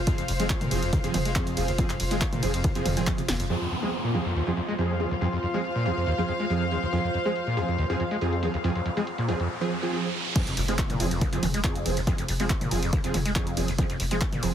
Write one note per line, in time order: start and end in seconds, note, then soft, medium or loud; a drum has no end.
0.00 3.49 F4 medium
0.00 3.50 C5 medium
0.00 3.50 F5 medium
0.07 0.13 F2 loud
0.07 0.17 F3 medium
0.07 0.17 C4 medium
0.07 0.17 G#4 medium
0.07 kick loud
0.07 closed hi-hat medium
0.07 ride medium
0.18 0.28 F1 medium
0.18 0.24 F2 medium
0.18 closed hi-hat medium
0.28 0.39 F1 loud
0.28 0.32 F2 medium
0.28 open hi-hat loud
0.28 ride medium
0.40 0.50 F1 medium
0.40 0.48 F3 medium
0.40 0.45 G#3 medium
0.40 0.48 C4 medium
0.40 0.48 G#4 medium
0.40 closed hi-hat medium
0.50 kick loud
0.50 clap loud
0.50 closed hi-hat medium
0.50 ride medium
0.61 0.71 F1 medium
0.61 0.73 A#2 medium
0.61 closed hi-hat soft
0.61 mid tom medium
0.71 0.82 F1 loud
0.71 0.78 D#2 medium
0.71 0.81 F3 medium
0.71 0.81 C4 medium
0.71 0.81 G#4 loud
0.71 open hi-hat medium
0.71 ride medium
0.83 0.93 F1 medium
0.83 0.91 F2 medium
0.83 closed hi-hat medium
0.93 0.99 D#2 loud
0.93 kick loud
0.93 closed hi-hat medium
0.93 mid tom medium
0.93 ride medium
1.04 1.14 F1 medium
1.04 1.10 F2 medium
1.04 1.18 F3 medium
1.04 1.18 C4 medium
1.04 1.18 G#4 loud
1.04 closed hi-hat medium
1.14 1.25 F1 loud
1.14 1.18 F2 medium
1.14 open hi-hat loud
1.14 mid tom loud
1.14 ride medium
1.25 1.36 F1 medium
1.25 1.31 G#3 medium
1.25 closed hi-hat medium
1.36 1.59 F2 medium
1.36 1.51 F3 medium
1.36 1.51 C4 medium
1.36 1.51 G#4 medium
1.36 kick loud
1.36 clap loud
1.36 closed hi-hat medium
1.36 ride medium
1.47 1.56 F1 medium
1.47 closed hi-hat medium
1.57 1.68 F1 loud
1.57 1.63 D#2 medium
1.57 1.67 F3 medium
1.57 1.67 C4 medium
1.57 1.67 G#4 medium
1.57 open hi-hat medium
1.57 ride medium
1.68 1.78 F1 medium
1.68 1.72 D#2 medium
1.68 closed hi-hat medium
1.78 1.85 F2 loud
1.78 1.88 F3 medium
1.78 1.88 C4 medium
1.78 1.88 G#4 medium
1.78 kick loud
1.78 closed hi-hat medium
1.78 ride medium
1.90 1.99 F1 medium
1.90 1.95 F2 medium
1.90 clap soft
1.90 closed hi-hat medium
2.00 2.11 F1 loud
2.00 2.04 F2 medium
2.00 open hi-hat loud
2.00 ride medium
2.11 2.21 F1 medium
2.11 2.20 F3 medium
2.11 2.17 G#3 medium
2.11 2.20 C4 medium
2.11 2.20 G#4 medium
2.11 closed hi-hat medium
2.21 kick loud
2.21 clap loud
2.21 closed hi-hat medium
2.21 ride medium
2.33 2.42 F1 medium
2.33 2.44 A#2 medium
2.33 closed hi-hat medium
2.33 mid tom medium
2.43 2.53 F1 loud
2.43 2.49 D#2 medium
2.43 2.52 F3 medium
2.43 2.52 C4 medium
2.43 2.52 G#4 loud
2.43 open hi-hat medium
2.43 ride medium
2.54 2.64 F1 medium
2.54 2.62 F2 medium
2.54 closed hi-hat medium
2.64 2.70 D#2 loud
2.64 kick loud
2.64 closed hi-hat medium
2.64 mid tom medium
2.64 ride medium
2.75 2.85 F1 medium
2.75 2.81 F2 medium
2.75 2.90 F3 medium
2.75 2.90 C4 medium
2.75 2.90 G#4 loud
2.75 closed hi-hat medium
2.86 2.96 F1 loud
2.86 2.98 F2 loud
2.86 open hi-hat loud
2.86 mid tom medium
2.86 ride medium
2.97 3.07 F1 medium
2.97 3.02 C3 medium
2.97 3.06 F3 loud
2.97 3.06 C4 medium
2.97 3.06 G#4 loud
2.97 closed hi-hat medium
3.07 3.13 F2 medium
3.07 kick loud
3.07 clap loud
3.07 closed hi-hat medium
3.07 ride medium
3.18 3.28 F1 medium
3.18 3.22 C3 medium
3.18 closed hi-hat medium
3.28 3.39 F1 loud
3.28 3.35 D#2 medium
3.28 snare medium
3.28 open hi-hat medium
3.28 ride medium
3.40 3.50 F1 medium
3.40 3.45 F2 medium
3.40 closed hi-hat medium
3.50 3.56 F2 loud
3.50 3.60 F3 medium
3.50 3.60 C4 medium
3.50 9.50 F4 medium
3.50 3.60 G#4 medium
3.50 closed hi-hat medium
3.50 crash medium
3.50 downlifter medium
3.61 3.67 F2 medium
3.61 closed hi-hat medium
3.71 3.75 F2 medium
3.71 closed hi-hat medium
3.83 3.91 F3 medium
3.83 3.88 G#3 medium
3.83 3.91 C4 medium
3.83 3.91 G#4 medium
3.83 closed hi-hat medium
3.93 closed hi-hat medium
4.04 4.16 A#2 medium
4.04 closed hi-hat medium
4.14 4.20 D#2 medium
4.14 4.24 F3 medium
4.14 4.24 C4 medium
4.14 4.24 G#4 medium
4.14 closed hi-hat medium
4.21 9.50 C5 medium
4.25 4.34 F2 medium
4.25 closed hi-hat medium
4.36 4.42 D#2 loud
4.36 closed hi-hat medium
4.47 4.53 F2 medium
4.47 4.61 F3 medium
4.47 4.61 C4 medium
4.47 4.61 G#4 medium
4.47 closed hi-hat medium
4.57 4.61 F2 medium
4.57 closed hi-hat medium
4.68 4.74 G#3 medium
4.68 closed hi-hat medium
4.78 5.02 F2 medium
4.78 4.93 F3 medium
4.78 4.93 C4 medium
4.78 4.93 G#4 medium
4.78 9.50 F5 medium
4.78 closed hi-hat medium
4.90 closed hi-hat medium
5.00 5.06 D#2 medium
5.00 5.10 F3 medium
5.00 5.10 C4 medium
5.00 5.10 G#4 medium
5.00 closed hi-hat medium
5.11 5.15 D#2 medium
5.11 closed hi-hat medium
5.21 5.28 F2 loud
5.21 5.31 F3 medium
5.21 5.31 C4 medium
5.21 5.31 G#4 medium
5.21 closed hi-hat medium
5.33 5.38 F2 medium
5.33 closed hi-hat medium
5.43 5.47 F2 medium
5.43 closed hi-hat medium
5.54 5.63 F3 medium
5.54 5.60 G#3 medium
5.54 5.63 C4 medium
5.54 5.63 G#4 medium
5.54 closed hi-hat medium
5.64 closed hi-hat medium
5.75 5.87 A#2 medium
5.75 closed hi-hat medium
5.86 5.92 D#2 medium
5.86 5.95 F3 medium
5.86 5.95 C4 medium
5.86 5.95 G#4 medium
5.86 closed hi-hat medium
5.97 6.05 F2 medium
5.97 closed hi-hat medium
6.07 6.13 D#2 loud
6.07 closed hi-hat medium
6.18 6.24 F2 medium
6.18 6.33 F3 medium
6.18 6.33 C4 medium
6.18 6.33 G#4 medium
6.18 closed hi-hat medium
6.29 6.32 F2 medium
6.29 closed hi-hat medium
6.40 6.45 G#3 medium
6.40 closed hi-hat medium
6.50 6.73 F2 medium
6.50 6.65 F3 medium
6.50 6.65 C4 medium
6.50 6.65 G#4 medium
6.50 closed hi-hat medium
6.61 closed hi-hat medium
6.71 6.78 D#2 medium
6.71 6.81 F3 medium
6.71 6.81 C4 medium
6.71 6.81 G#4 medium
6.71 closed hi-hat medium
6.83 6.86 D#2 medium
6.83 closed hi-hat medium
6.93 6.99 F2 loud
6.93 7.02 F3 medium
6.93 7.02 C4 medium
6.93 7.02 G#4 medium
6.93 closed hi-hat medium
6.93 riser medium
7.04 7.10 F2 medium
7.04 closed hi-hat medium
7.14 7.18 F2 medium
7.14 closed hi-hat medium
7.25 7.34 F3 medium
7.25 7.31 G#3 medium
7.25 7.34 C4 medium
7.25 7.34 G#4 medium
7.25 closed hi-hat medium
7.36 closed hi-hat medium
7.47 7.59 A#2 medium
7.47 closed hi-hat medium
7.57 7.63 D#2 medium
7.57 7.67 F3 medium
7.57 7.67 C4 medium
7.57 7.67 G#4 loud
7.57 closed hi-hat medium
7.68 7.77 F2 medium
7.68 closed hi-hat medium
7.79 7.85 D#2 loud
7.79 closed hi-hat medium
7.90 7.95 F2 medium
7.90 8.04 F3 medium
7.90 8.04 C4 medium
7.90 8.04 G#4 loud
7.90 closed hi-hat medium
8.00 8.04 F2 medium
8.00 closed hi-hat medium
8.11 8.17 G#3 medium
8.11 closed hi-hat medium
8.21 8.44 F2 medium
8.21 8.36 F3 medium
8.21 8.36 C4 medium
8.21 8.36 G#4 medium
8.21 closed hi-hat medium
8.33 closed hi-hat soft
8.43 8.49 D#2 medium
8.43 8.52 F3 medium
8.43 8.52 C4 medium
8.43 8.52 G#4 medium
8.43 closed hi-hat medium
8.54 8.57 D#2 medium
8.54 closed hi-hat medium
8.64 8.70 F2 loud
8.64 8.74 F3 medium
8.64 8.74 C4 medium
8.64 8.74 G#4 medium
8.64 closed hi-hat medium
8.75 8.81 F2 medium
8.75 closed hi-hat soft
8.86 8.89 F2 medium
8.86 closed hi-hat medium
8.97 9.06 F3 medium
8.97 9.03 G#3 medium
8.97 9.06 C4 medium
8.97 9.06 G#4 medium
8.97 closed hi-hat medium
9.07 closed hi-hat medium
9.18 9.30 A#2 medium
9.18 closed hi-hat soft
9.28 9.35 D#2 medium
9.28 9.38 F3 medium
9.28 9.38 C4 medium
9.28 9.38 G#4 medium
9.28 closed hi-hat medium
9.40 9.48 F2 medium
9.40 closed hi-hat medium
9.61 9.75 F3 medium
9.61 9.75 C4 medium
9.61 9.75 G#4 loud
9.83 9.91 F3 medium
9.83 9.91 C4 medium
9.83 9.91 G#4 loud
9.93 10.08 F3 medium
9.93 10.08 C4 medium
9.93 10.08 G#4 medium
10.36 10.42 F2 loud
10.36 10.45 F3 medium
10.36 10.45 C4 medium
10.36 10.45 G#4 medium
10.36 kick loud
10.36 closed hi-hat medium
10.36 ride medium
10.36 crash loud
10.36 impact medium
10.47 10.57 F1 medium
10.47 10.53 F2 medium
10.47 closed hi-hat medium
10.57 10.68 F1 loud
10.57 10.61 F2 medium
10.57 open hi-hat loud
10.57 ride medium
10.68 10.78 F1 medium
10.68 10.77 F3 medium
10.68 10.74 G#3 medium
10.68 10.77 C4 medium
10.68 10.77 G#4 medium
10.68 closed hi-hat medium
10.79 kick loud
10.79 clap loud
10.79 closed hi-hat medium
10.79 ride medium
10.90 10.99 F1 medium
10.90 11.02 A#2 medium
10.90 closed hi-hat medium
10.90 mid tom medium
11.00 11.11 F1 loud
11.00 11.06 D#2 medium
11.00 11.09 F3 medium
11.00 11.10 C4 medium
11.00 11.09 G#4 loud
11.00 open hi-hat medium
11.00 ride medium
11.11 11.21 F1 medium
11.11 11.20 F2 medium
11.11 closed hi-hat medium
11.21 11.28 D#2 loud
11.21 kick loud
11.21 closed hi-hat medium
11.21 mid tom medium
11.21 ride medium
11.33 11.42 F1 medium
11.33 11.38 F2 medium
11.33 11.47 F3 medium
11.33 11.47 C4 medium
11.33 11.47 G#4 loud
11.33 closed hi-hat medium
11.43 11.53 F1 loud
11.43 11.47 F2 medium
11.43 open hi-hat loud
11.43 mid tom medium
11.43 ride medium
11.54 11.64 F1 medium
11.54 11.60 G#3 medium
11.54 closed hi-hat medium
11.64 11.87 F2 medium
11.64 11.79 F3 medium
11.64 11.79 C4 medium
11.64 11.79 G#4 medium
11.64 kick loud
11.64 clap loud
11.64 closed hi-hat medium
11.64 ride medium
11.75 11.85 F1 medium
11.75 closed hi-hat medium
11.86 11.96 F1 loud
11.86 11.92 D#2 medium
11.86 11.95 F3 medium
11.86 11.95 C4 medium
11.86 11.95 G#4 medium
11.86 open hi-hat medium
11.86 ride medium
11.97 12.07 F1 medium
11.97 12.00 D#2 medium
11.97 closed hi-hat medium
12.07 12.13 F2 loud
12.07 12.17 F3 medium
12.07 12.17 C4 medium
12.07 12.17 G#4 medium
12.07 kick loud
12.07 closed hi-hat medium
12.07 ride medium
12.18 12.28 F1 medium
12.18 12.24 F2 medium
12.18 closed hi-hat medium
12.29 12.39 F1 loud
12.29 12.32 F2 medium
12.29 open hi-hat loud
12.29 ride medium
12.40 12.50 F1 medium
12.40 12.49 F3 medium
12.40 12.45 G#3 medium
12.40 12.49 C4 medium
12.40 12.49 G#4 medium
12.40 closed hi-hat medium
12.50 kick loud
12.50 clap loud
12.50 closed hi-hat medium
12.50 ride medium
12.61 12.71 F1 medium
12.61 12.73 A#2 medium
12.61 closed hi-hat medium
12.61 mid tom medium
12.71 12.82 F1 loud
12.71 12.78 D#2 medium
12.71 12.81 F3 medium
12.71 12.81 C4 medium
12.71 12.81 G#4 loud
12.71 open hi-hat loud
12.71 ride medium
12.83 12.93 F1 medium
12.83 12.91 F2 medium
12.83 closed hi-hat medium
12.93 12.99 D#2 loud
12.93 kick loud
12.93 closed hi-hat medium
12.93 mid tom medium
12.93 ride medium
13.04 13.14 F1 medium
13.04 13.10 F2 medium
13.04 13.18 F3 medium
13.04 13.18 C4 medium
13.04 13.18 G#4 loud
13.04 closed hi-hat medium
13.14 13.25 F1 loud
13.14 13.18 F2 medium
13.14 open hi-hat loud
13.14 mid tom medium
13.14 ride medium
13.26 13.36 F1 medium
13.26 13.31 G#3 medium
13.26 closed hi-hat medium
13.36 13.59 F2 medium
13.36 13.51 F3 medium
13.36 13.51 C4 medium
13.36 13.51 G#4 medium
13.36 kick loud
13.36 clap loud
13.36 closed hi-hat medium
13.47 13.57 F1 medium
13.47 closed hi-hat medium
13.57 13.68 F1 loud
13.57 13.63 D#2 medium
13.57 13.67 F3 medium
13.57 13.67 C4 medium
13.57 13.67 G#4 medium
13.57 open hi-hat loud
13.57 ride medium
13.68 13.78 F1 medium
13.68 13.72 D#2 medium
13.68 closed hi-hat medium
13.78 13.85 F2 loud
13.78 13.88 F3 medium
13.78 13.88 C4 medium
13.78 13.88 G#4 medium
13.78 kick loud
13.78 closed hi-hat medium
13.78 ride medium
13.90 13.99 F1 medium
13.90 13.95 F2 medium
13.90 closed hi-hat medium
14.00 14.11 F1 loud
14.00 14.04 F2 medium
14.00 open hi-hat loud
14.00 ride medium
14.11 14.21 F1 medium
14.11 14.20 F3 medium
14.11 14.17 G#3 medium
14.11 14.20 C4 medium
14.11 14.20 G#4 medium
14.11 closed hi-hat medium
14.21 kick loud
14.21 clap loud
14.21 closed hi-hat medium
14.21 ride medium
14.33 14.42 F1 medium
14.33 14.44 A#2 medium
14.33 closed hi-hat medium
14.33 mid tom medium
14.43 14.53 F1 loud
14.43 14.49 D#2 medium
14.43 14.52 F3 medium
14.43 14.52 C4 medium
14.43 14.52 G#4 loud
14.43 open hi-hat loud
14.43 ride medium